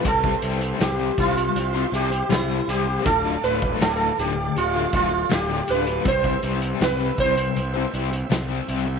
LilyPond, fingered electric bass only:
\new Staff \with { instrumentName = "Fingered electric bass" } { \clef bass \time 4/4 \key c \mixolydian \tempo 4 = 80 c,8 c,8 c,8 c,8 c,8 c,8 c,8 c,8 | d,,8 d,,8 d,,8 d,,8 d,,8 d,,8 d,,8 d,,8 | c,8 c,8 c,8 c,8 c,8 c,8 c,8 c,8 | }